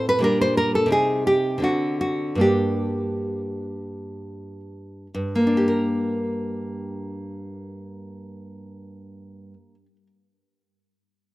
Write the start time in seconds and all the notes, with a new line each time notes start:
Already playing: A2 C4
0.09 B4
0.19 A#2 G3 D4
0.24 A#4
0.41 C5
0.57 A#4
0.75 A4
0.86 C3 C4
0.91 D#4 G#4
1.27 G4
1.58 D3 C4
1.62 D4 F#4
2.01 F#4
2.35 G2 A#3
2.40 D4 G4
5.14 G2
5.35 A#3
5.47 D4
5.57 G4
5.68 A#4